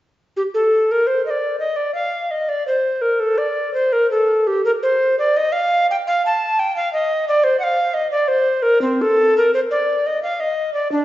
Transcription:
recorder
0.37 G4
0.54 A4
0.91 A#4
1.07 C5
1.26 D#5
1.30 D5
1.59 D#5
1.76 D5
1.95 F5
2.31 D#5
2.49 D5
2.68 C5
3.02 A#4
3.20 A4
3.38 D5
3.74 C5
3.93 A#4
4.11 A4
4.47 G4
4.65 A#4
4.83 C5
5.19 D5
5.37 D#5
5.52 F5
5.91 G5
6.07 F5
6.26 A5
6.59 G5
6.76 F5
6.93 D#5
7.28 D5
7.44 C5
7.60 F5 F#5
7.94 D#5
8.11 D5
8.28 C5
8.62 A#4
8.82 C4
9.02 A4
9.38 A#4
9.54 C5
9.71 D5
10.06 D#5
10.23 F5
10.40 D#5
10.74 D5
10.92 D4

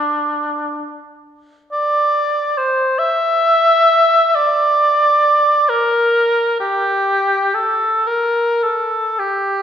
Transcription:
cor anglais
Already playing: D4
1.72 D5
2.58 C5
2.99 E5
4.35 D5
5.69 A#4
6.60 G4
7.55 A4
8.07 A#4
8.63 A4
9.19 G4

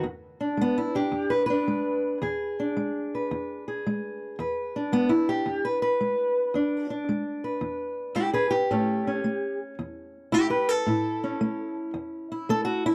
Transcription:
steel-string acoustic guitar
0.03 E2
0.41 D4
0.57 G#3
0.61 B3
0.78 E4
0.95 D4 G4
1.12 E2
1.30 B4
1.46 D4 B4
1.68 G#3
2.22 E2 G#4
2.60 D4
2.77 G#3
3.15 B4
3.31 E2
3.68 G#4
3.87 G#3
4.39 E2 B4
4.76 D4
4.92 G#3 B3
5.09 E4
5.29 G4
5.46 E2
5.65 B4
5.82 B4
6.01 G#3
6.54 E2 D4
6.90 D4
7.09 G#3
7.44 B4
7.61 E2
8.15 G#3 E4 G4
8.33 G#4 B4
8.51 G4
8.71 A2 A3 C#4
9.07 C#4
9.24 A3
9.79 E2
10.32 A3 E4 G4
10.50 G4 B4
10.69 A4
10.86 A2 E4
11.24 C#4
11.41 A3
11.94 E2
12.32 E4
12.49 A3 A4
12.65 F#4
12.86 E4

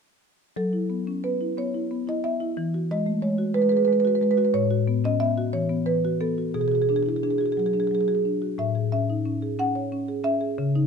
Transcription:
marimba
0.56 F#3 A4
0.73 E4
0.90 B3
1.07 C#4
1.24 B3 B4
1.41 E4
1.58 B3 C#5
1.74 E4
1.91 B3
2.07 E4 D#5
2.24 B3 E5
2.40 E4
2.57 E3
2.74 F#4
2.91 G#3 D#5
3.06 A3
3.22 G#3 C#5
3.38 F#4
3.54 G#3 B4
3.62 B4
3.69 G#4 B4
3.77 B4
3.85 G#3 B4
3.93 B4
4.00 B4
4.05 F#4 B4
4.15 B4
4.21 G#3 B4
4.31 B4
4.38 F#4 B4
4.45 B4
4.54 A2 C#5
4.70 F#4
4.88 B3
5.04 C#4 D#5
5.20 B3 E5
5.38 F#4
5.53 E3 C#5
5.69 B3
5.86 E3 B4
6.05 F#4
6.21 B3 A4
6.38 F#4
6.54 B2 G#4
6.61 G#4
6.68 F#4 G#4
6.75 G#4
6.82 G#4
6.89 D4 G#4
6.96 G#4
7.03 E4 G#4
7.09 G#4
7.16 G#4
7.23 D4 G#4
7.31 G#4
7.38 F#4 G#4
7.46 G#4
7.52 G#4
7.57 F#3 G#4
7.66 G#4
7.73 D4 G#4
7.80 G#4
7.87 G#4
7.91 F#3 G#4
8.01 G#4
8.08 F#4 G#4
8.15 G#4
8.25 D4
8.42 F#4
8.58 A2 E5
8.75 G#4
8.92 C#4 E5
9.10 D#4
9.25 C#4
9.42 G#4
9.59 C#4 F#5
9.75 C#5
9.92 C#4
10.08 G#4
10.24 C#4 E5
10.41 G#4
10.58 C#3
10.75 D#4

